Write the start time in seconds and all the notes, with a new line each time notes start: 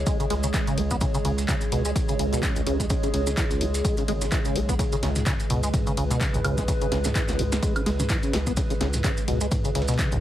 Already playing: C#3 G#3 G#4 C#5
0.06 G#3, kick, closed hi-hat, ride, maracas
0.20 C#3, closed hi-hat, ride, maracas
0.30 C#2 G#3, snare, open hi-hat, ride
0.43 C#3, closed hi-hat, maracas
0.54 E3, kick, snare, clap, closed hi-hat, ride, maracas
0.67 C#3, closed hi-hat, ride, maracas
0.77 C#2 B3, open hi-hat, ride
0.91 B3, kick, closed hi-hat, maracas
1.01 C#3, kick, closed hi-hat, ride, maracas
1.14 C#3, closed hi-hat, maracas
1.25 C#2 C#3, open hi-hat, ride
1.38 closed hi-hat, ride, maracas
1.48 C#3, kick, snare, clap, closed hi-hat, ride, maracas
1.61 closed hi-hat, maracas
1.72 C#2 B2, snare, open hi-hat, ride
1.85 G#3, closed hi-hat, maracas
1.96 kick, closed hi-hat, ride, maracas
2.09 C#3, closed hi-hat, maracas
2.19 C#2 C#3, open hi-hat, ride
2.33 B2, closed hi-hat, maracas
2.43 C#3, kick, snare, clap, closed hi-hat, ride, maracas
2.56 C#2, closed hi-hat, maracas
2.67 C#2 C#3, open hi-hat, ride
2.80 G#3, kick, closed hi-hat, maracas
2.90 C#3, kick, closed hi-hat, ride, maracas
3.03 C#3, closed hi-hat, maracas
3.14 C#2 C#3, open hi-hat, ride
3.27 C#3, snare, closed hi-hat, maracas
3.37 E3, kick, snare, clap, closed hi-hat, ride, maracas
3.51 C#2, snare, closed hi-hat, maracas
3.61 C#2 B3, open hi-hat, ride
3.74 snare, closed hi-hat, maracas
3.85 G#3, kick, closed hi-hat, ride, maracas
3.97 C#3, closed hi-hat, ride, maracas
4.08 G#1 G#3, open hi-hat, ride
4.22 C#3, snare, closed hi-hat, maracas
4.32 E3, kick, snare, clap, closed hi-hat, ride, maracas
4.45 C#3, closed hi-hat, ride, maracas
4.55 B1 B3, open hi-hat, ride
4.69 B3, kick, closed hi-hat, maracas
4.79 C#3 B4, kick, closed hi-hat, ride, maracas
4.92 C#3, closed hi-hat, maracas
5.03 C#2 C#3, snare, open hi-hat, ride
5.16 closed hi-hat, mid tom, ride, maracas
5.26 C#3, kick, snare, clap, closed hi-hat, ride, maracas
5.40 closed hi-hat, maracas
5.50 C#2 B2, snare, mid tom, open hi-hat, ride
5.63 G#3, closed hi-hat, maracas
5.74 kick, closed hi-hat, mid tom, ride, maracas
5.87 C#3, closed hi-hat, maracas
5.97 C#2 C#3, open hi-hat, ride
6.11 B2, closed hi-hat, maracas
6.21 C#3, kick, snare, clap, closed hi-hat, ride, maracas
6.34 C#2, closed hi-hat, mid tom, maracas
6.44 C#2 C#3, open hi-hat, ride, high woodblock
6.58 G#3, kick, snare, closed hi-hat, maracas
6.68 C#3, kick, closed hi-hat, ride, maracas
6.81 C#3, closed hi-hat, maracas
6.92 C#2 C#3, snare, open hi-hat, ride
7.04 C#3, snare, closed hi-hat, mid tom, maracas
7.15 E3, kick, snare, clap, closed hi-hat, ride, maracas
7.28 C#2, snare, closed hi-hat, maracas
7.39 C#2 B3, mid tom, open hi-hat, ride
7.52 snare, closed hi-hat, maracas
7.63 G#3, kick, closed hi-hat, ride, maracas
7.76 C#3, closed hi-hat, ride, high woodblock, maracas
7.86 C#2 G#3, snare, open hi-hat, ride
7.99 C#3, closed hi-hat, mid tom, maracas
8.09 E3, kick, snare, clap, closed hi-hat, ride, maracas
8.23 C#3, closed hi-hat, ride, maracas
8.33 C#2 B3, snare, open hi-hat, ride
8.47 B3, kick, closed hi-hat, maracas
8.57 C#3, kick, closed hi-hat, ride, maracas
8.70 C#3, closed hi-hat, maracas
8.81 C#2 C#3, snare, open hi-hat, ride
8.93 closed hi-hat, mid tom, ride, maracas
9.04 C#3, kick, snare, clap, closed hi-hat, ride, maracas
9.17 closed hi-hat, maracas
9.28 C#2 B2, snare, mid tom, open hi-hat, ride
9.41 G#3, closed hi-hat, maracas
9.51 kick, closed hi-hat, mid tom, ride, maracas
9.65 C#3, closed hi-hat, maracas
9.75 C#2 C#3, snare, open hi-hat, ride
9.82 snare, ride
9.88 B2, snare, closed hi-hat, ride, maracas
9.94 snare, ride
9.99 C#3, kick, snare, clap, closed hi-hat, ride, maracas
10.12 C#2, closed hi-hat, mid tom, maracas